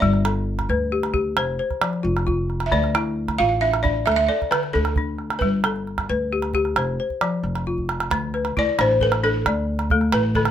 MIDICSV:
0, 0, Header, 1, 5, 480
1, 0, Start_track
1, 0, Tempo, 449102
1, 20, Time_signature, 12, 3, 24, 8
1, 11232, End_track
2, 0, Start_track
2, 0, Title_t, "Balafon"
2, 0, Program_c, 0, 12
2, 2, Note_on_c, 0, 74, 70
2, 1409, Note_off_c, 0, 74, 0
2, 2845, Note_on_c, 0, 76, 66
2, 2908, Note_on_c, 0, 74, 82
2, 2911, Note_off_c, 0, 76, 0
2, 3617, Note_on_c, 0, 77, 103
2, 3648, Note_off_c, 0, 74, 0
2, 3858, Note_on_c, 0, 76, 88
2, 3868, Note_off_c, 0, 77, 0
2, 4091, Note_on_c, 0, 74, 79
2, 4109, Note_off_c, 0, 76, 0
2, 4335, Note_on_c, 0, 76, 84
2, 4345, Note_off_c, 0, 74, 0
2, 4387, Note_off_c, 0, 76, 0
2, 4399, Note_on_c, 0, 76, 64
2, 4437, Note_off_c, 0, 76, 0
2, 4450, Note_on_c, 0, 76, 112
2, 4580, Note_on_c, 0, 74, 88
2, 4581, Note_off_c, 0, 76, 0
2, 4820, Note_on_c, 0, 71, 85
2, 4830, Note_off_c, 0, 74, 0
2, 5059, Note_on_c, 0, 69, 82
2, 5070, Note_off_c, 0, 71, 0
2, 5741, Note_off_c, 0, 69, 0
2, 5758, Note_on_c, 0, 71, 69
2, 6451, Note_off_c, 0, 71, 0
2, 9178, Note_on_c, 0, 74, 99
2, 9279, Note_off_c, 0, 74, 0
2, 9414, Note_on_c, 0, 72, 92
2, 9648, Note_off_c, 0, 72, 0
2, 9648, Note_on_c, 0, 71, 87
2, 9874, Note_on_c, 0, 69, 81
2, 9885, Note_off_c, 0, 71, 0
2, 10546, Note_off_c, 0, 69, 0
2, 10830, Note_on_c, 0, 71, 95
2, 11066, Note_on_c, 0, 69, 87
2, 11074, Note_off_c, 0, 71, 0
2, 11232, Note_off_c, 0, 69, 0
2, 11232, End_track
3, 0, Start_track
3, 0, Title_t, "Balafon"
3, 0, Program_c, 1, 12
3, 23, Note_on_c, 1, 55, 77
3, 268, Note_on_c, 1, 69, 53
3, 501, Note_off_c, 1, 55, 0
3, 744, Note_on_c, 1, 71, 73
3, 984, Note_off_c, 1, 69, 0
3, 985, Note_on_c, 1, 67, 62
3, 1201, Note_off_c, 1, 67, 0
3, 1214, Note_on_c, 1, 67, 70
3, 1222, Note_off_c, 1, 71, 0
3, 1458, Note_off_c, 1, 67, 0
3, 1467, Note_on_c, 1, 72, 74
3, 1690, Note_off_c, 1, 72, 0
3, 1703, Note_on_c, 1, 72, 65
3, 1938, Note_on_c, 1, 53, 70
3, 2172, Note_on_c, 1, 65, 67
3, 2409, Note_off_c, 1, 65, 0
3, 2420, Note_off_c, 1, 53, 0
3, 2422, Note_on_c, 1, 65, 69
3, 2423, Note_off_c, 1, 72, 0
3, 2902, Note_off_c, 1, 65, 0
3, 2902, Note_on_c, 1, 50, 82
3, 3149, Note_on_c, 1, 64, 64
3, 3383, Note_off_c, 1, 50, 0
3, 3629, Note_on_c, 1, 65, 65
3, 3864, Note_on_c, 1, 62, 63
3, 3867, Note_off_c, 1, 64, 0
3, 4089, Note_off_c, 1, 62, 0
3, 4102, Note_on_c, 1, 62, 80
3, 4107, Note_off_c, 1, 65, 0
3, 4348, Note_on_c, 1, 69, 63
3, 4571, Note_off_c, 1, 69, 0
3, 4584, Note_off_c, 1, 62, 0
3, 4584, Note_on_c, 1, 69, 58
3, 4819, Note_on_c, 1, 50, 72
3, 5064, Note_on_c, 1, 62, 64
3, 5303, Note_off_c, 1, 50, 0
3, 5305, Note_off_c, 1, 62, 0
3, 5305, Note_off_c, 1, 69, 0
3, 5317, Note_on_c, 1, 62, 65
3, 5792, Note_off_c, 1, 62, 0
3, 5793, Note_on_c, 1, 55, 69
3, 6035, Note_on_c, 1, 69, 61
3, 6271, Note_off_c, 1, 55, 0
3, 6515, Note_on_c, 1, 71, 74
3, 6752, Note_off_c, 1, 69, 0
3, 6760, Note_on_c, 1, 67, 61
3, 6985, Note_off_c, 1, 67, 0
3, 6992, Note_off_c, 1, 71, 0
3, 6998, Note_on_c, 1, 67, 77
3, 7233, Note_off_c, 1, 67, 0
3, 7236, Note_on_c, 1, 72, 61
3, 7466, Note_off_c, 1, 72, 0
3, 7479, Note_on_c, 1, 72, 56
3, 7709, Note_on_c, 1, 53, 67
3, 8189, Note_off_c, 1, 53, 0
3, 8194, Note_off_c, 1, 72, 0
3, 8198, Note_on_c, 1, 65, 61
3, 8673, Note_off_c, 1, 65, 0
3, 8677, Note_on_c, 1, 50, 81
3, 8913, Note_on_c, 1, 71, 57
3, 9153, Note_off_c, 1, 50, 0
3, 9157, Note_on_c, 1, 64, 56
3, 9390, Note_on_c, 1, 62, 81
3, 9630, Note_off_c, 1, 71, 0
3, 9633, Note_on_c, 1, 69, 68
3, 9859, Note_off_c, 1, 62, 0
3, 9871, Note_on_c, 1, 62, 80
3, 9872, Note_off_c, 1, 64, 0
3, 10119, Note_on_c, 1, 74, 67
3, 10349, Note_off_c, 1, 62, 0
3, 10349, Note_off_c, 1, 69, 0
3, 10595, Note_on_c, 1, 57, 78
3, 10597, Note_on_c, 1, 69, 64
3, 10831, Note_off_c, 1, 74, 0
3, 11070, Note_off_c, 1, 57, 0
3, 11077, Note_on_c, 1, 50, 78
3, 11232, Note_off_c, 1, 50, 0
3, 11232, Note_off_c, 1, 69, 0
3, 11232, End_track
4, 0, Start_track
4, 0, Title_t, "Upright bass"
4, 0, Program_c, 2, 32
4, 19, Note_on_c, 2, 31, 101
4, 697, Note_off_c, 2, 31, 0
4, 737, Note_on_c, 2, 38, 83
4, 1416, Note_off_c, 2, 38, 0
4, 1465, Note_on_c, 2, 29, 84
4, 1681, Note_off_c, 2, 29, 0
4, 2186, Note_on_c, 2, 29, 91
4, 2861, Note_off_c, 2, 29, 0
4, 2910, Note_on_c, 2, 38, 92
4, 3585, Note_off_c, 2, 38, 0
4, 3632, Note_on_c, 2, 33, 82
4, 4306, Note_off_c, 2, 33, 0
4, 4351, Note_on_c, 2, 38, 85
4, 4567, Note_off_c, 2, 38, 0
4, 5076, Note_on_c, 2, 38, 87
4, 5749, Note_off_c, 2, 38, 0
4, 5803, Note_on_c, 2, 31, 79
4, 6473, Note_off_c, 2, 31, 0
4, 6512, Note_on_c, 2, 38, 89
4, 7188, Note_off_c, 2, 38, 0
4, 7232, Note_on_c, 2, 29, 77
4, 7448, Note_off_c, 2, 29, 0
4, 7945, Note_on_c, 2, 29, 78
4, 8624, Note_off_c, 2, 29, 0
4, 8662, Note_on_c, 2, 38, 84
4, 9102, Note_off_c, 2, 38, 0
4, 9156, Note_on_c, 2, 38, 82
4, 9262, Note_off_c, 2, 38, 0
4, 9393, Note_on_c, 2, 33, 89
4, 10067, Note_off_c, 2, 33, 0
4, 10110, Note_on_c, 2, 38, 90
4, 10784, Note_off_c, 2, 38, 0
4, 10824, Note_on_c, 2, 33, 88
4, 11232, Note_off_c, 2, 33, 0
4, 11232, End_track
5, 0, Start_track
5, 0, Title_t, "Calabash"
5, 27, Note_on_c, 9, 36, 65
5, 134, Note_off_c, 9, 36, 0
5, 144, Note_on_c, 9, 38, 20
5, 251, Note_off_c, 9, 38, 0
5, 268, Note_on_c, 9, 38, 65
5, 375, Note_off_c, 9, 38, 0
5, 628, Note_on_c, 9, 36, 53
5, 628, Note_on_c, 9, 38, 53
5, 735, Note_off_c, 9, 36, 0
5, 735, Note_off_c, 9, 38, 0
5, 754, Note_on_c, 9, 38, 19
5, 861, Note_off_c, 9, 38, 0
5, 1105, Note_on_c, 9, 38, 51
5, 1212, Note_off_c, 9, 38, 0
5, 1218, Note_on_c, 9, 36, 57
5, 1324, Note_off_c, 9, 36, 0
5, 1461, Note_on_c, 9, 38, 61
5, 1568, Note_off_c, 9, 38, 0
5, 1823, Note_on_c, 9, 36, 49
5, 1823, Note_on_c, 9, 38, 19
5, 1930, Note_off_c, 9, 36, 0
5, 1930, Note_off_c, 9, 38, 0
5, 1940, Note_on_c, 9, 38, 67
5, 2047, Note_off_c, 9, 38, 0
5, 2063, Note_on_c, 9, 38, 21
5, 2170, Note_off_c, 9, 38, 0
5, 2315, Note_on_c, 9, 38, 44
5, 2422, Note_off_c, 9, 38, 0
5, 2432, Note_on_c, 9, 36, 67
5, 2539, Note_off_c, 9, 36, 0
5, 2669, Note_on_c, 9, 38, 21
5, 2776, Note_off_c, 9, 38, 0
5, 2782, Note_on_c, 9, 38, 56
5, 2889, Note_off_c, 9, 38, 0
5, 2906, Note_on_c, 9, 36, 67
5, 3013, Note_off_c, 9, 36, 0
5, 3033, Note_on_c, 9, 38, 23
5, 3140, Note_off_c, 9, 38, 0
5, 3152, Note_on_c, 9, 38, 66
5, 3259, Note_off_c, 9, 38, 0
5, 3510, Note_on_c, 9, 36, 50
5, 3510, Note_on_c, 9, 38, 55
5, 3617, Note_off_c, 9, 36, 0
5, 3617, Note_off_c, 9, 38, 0
5, 3638, Note_on_c, 9, 38, 21
5, 3745, Note_off_c, 9, 38, 0
5, 3993, Note_on_c, 9, 38, 53
5, 4099, Note_off_c, 9, 38, 0
5, 4116, Note_on_c, 9, 36, 66
5, 4223, Note_off_c, 9, 36, 0
5, 4353, Note_on_c, 9, 38, 58
5, 4460, Note_off_c, 9, 38, 0
5, 4723, Note_on_c, 9, 36, 49
5, 4723, Note_on_c, 9, 38, 20
5, 4829, Note_off_c, 9, 36, 0
5, 4829, Note_off_c, 9, 38, 0
5, 4833, Note_on_c, 9, 38, 60
5, 4940, Note_off_c, 9, 38, 0
5, 4951, Note_on_c, 9, 38, 22
5, 5058, Note_off_c, 9, 38, 0
5, 5183, Note_on_c, 9, 38, 44
5, 5290, Note_off_c, 9, 38, 0
5, 5300, Note_on_c, 9, 36, 66
5, 5407, Note_off_c, 9, 36, 0
5, 5542, Note_on_c, 9, 38, 20
5, 5649, Note_off_c, 9, 38, 0
5, 5669, Note_on_c, 9, 38, 52
5, 5776, Note_off_c, 9, 38, 0
5, 5783, Note_on_c, 9, 36, 62
5, 5783, Note_on_c, 9, 38, 21
5, 5890, Note_off_c, 9, 36, 0
5, 5890, Note_off_c, 9, 38, 0
5, 6026, Note_on_c, 9, 38, 63
5, 6133, Note_off_c, 9, 38, 0
5, 6155, Note_on_c, 9, 38, 19
5, 6262, Note_off_c, 9, 38, 0
5, 6278, Note_on_c, 9, 38, 18
5, 6385, Note_off_c, 9, 38, 0
5, 6390, Note_on_c, 9, 36, 52
5, 6390, Note_on_c, 9, 38, 50
5, 6497, Note_off_c, 9, 36, 0
5, 6497, Note_off_c, 9, 38, 0
5, 6866, Note_on_c, 9, 38, 44
5, 6973, Note_off_c, 9, 38, 0
5, 6985, Note_on_c, 9, 36, 64
5, 7092, Note_off_c, 9, 36, 0
5, 7109, Note_on_c, 9, 38, 22
5, 7215, Note_off_c, 9, 38, 0
5, 7227, Note_on_c, 9, 38, 62
5, 7334, Note_off_c, 9, 38, 0
5, 7590, Note_on_c, 9, 36, 45
5, 7697, Note_off_c, 9, 36, 0
5, 7709, Note_on_c, 9, 38, 59
5, 7815, Note_off_c, 9, 38, 0
5, 7949, Note_on_c, 9, 38, 19
5, 8056, Note_off_c, 9, 38, 0
5, 8074, Note_on_c, 9, 38, 45
5, 8181, Note_off_c, 9, 38, 0
5, 8191, Note_on_c, 9, 36, 37
5, 8298, Note_off_c, 9, 36, 0
5, 8314, Note_on_c, 9, 36, 43
5, 8421, Note_off_c, 9, 36, 0
5, 8434, Note_on_c, 9, 38, 48
5, 8541, Note_off_c, 9, 38, 0
5, 8555, Note_on_c, 9, 38, 51
5, 8661, Note_off_c, 9, 38, 0
5, 8671, Note_on_c, 9, 36, 66
5, 8671, Note_on_c, 9, 38, 72
5, 8778, Note_off_c, 9, 36, 0
5, 8778, Note_off_c, 9, 38, 0
5, 8913, Note_on_c, 9, 38, 22
5, 9020, Note_off_c, 9, 38, 0
5, 9029, Note_on_c, 9, 38, 53
5, 9136, Note_off_c, 9, 38, 0
5, 9160, Note_on_c, 9, 36, 72
5, 9267, Note_off_c, 9, 36, 0
5, 9392, Note_on_c, 9, 38, 67
5, 9499, Note_off_c, 9, 38, 0
5, 9624, Note_on_c, 9, 36, 62
5, 9731, Note_off_c, 9, 36, 0
5, 9746, Note_on_c, 9, 38, 57
5, 9853, Note_off_c, 9, 38, 0
5, 10111, Note_on_c, 9, 36, 68
5, 10111, Note_on_c, 9, 38, 65
5, 10217, Note_off_c, 9, 36, 0
5, 10217, Note_off_c, 9, 38, 0
5, 10464, Note_on_c, 9, 38, 51
5, 10571, Note_off_c, 9, 38, 0
5, 10584, Note_on_c, 9, 36, 69
5, 10691, Note_off_c, 9, 36, 0
5, 10701, Note_on_c, 9, 38, 24
5, 10807, Note_off_c, 9, 38, 0
5, 10821, Note_on_c, 9, 38, 77
5, 10928, Note_off_c, 9, 38, 0
5, 11061, Note_on_c, 9, 36, 75
5, 11168, Note_off_c, 9, 36, 0
5, 11174, Note_on_c, 9, 38, 60
5, 11232, Note_off_c, 9, 38, 0
5, 11232, End_track
0, 0, End_of_file